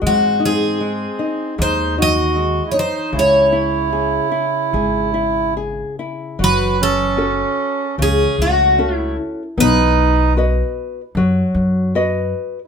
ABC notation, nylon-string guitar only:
X:1
M:4/4
L:1/8
Q:1/4=76
K:C#m
V:1 name="Nylon-string guitar"
G, D G, D G, D G, D | C, E G E G E G E | [K:F#m] F,2 [CFA]2 C,2 [CFA]2 | B,2 [FB^d]2 F,2 [FBd]2 |]